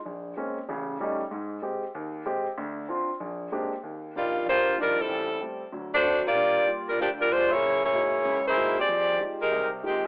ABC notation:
X:1
M:4/4
L:1/8
Q:"Swing" 1/4=190
K:Bbmix
V:1 name="Saxophone section"
z8 | z8 | z8 | [K:Eb] z2 [G,B,DF]2 [B,FGc]2 [G,DFB] [G,C_F=A]- |
[G,C_F=A]2 z3 [=A,D^Fc]2 [B,=FGd]- | [B,FGd]2 z [G,DFB] [F,B,DG] [G,DFB] [A,DFc] [B,_FA_d]- | [B,_FA_d] [B,FAd]4 [B,FAc]2 [CGA=d]- | [CGAd]2 z [A,EGB]2 z [E,A,CG] z |]
V:2 name="Grand piano"
B,,,2 [A,B,C_D] z [=A,,,^C,]2 [G,=A,^C^D] z | A,,2 [A,CG] z E,,2 [A,CG] z | D,,2 [CDF] z B,,,2 [A,B,CDG] z | [K:Eb] E,,2 [F,G,DE] z [B,,,D,]2 [F,G,DE] z |
=A,,,2 [G,=A,C] z [D,,^F,]2 [F,CD] z | G,,2 [G,B,F] z D,,2 [G,B,F] z | _G,,2 [A,B,E_F_G] z [_D,,_D,]2 [A,B,EFG] z | [F,,F,]2 [A,EFG] z [C,,C,]2 [A,EFG] z |]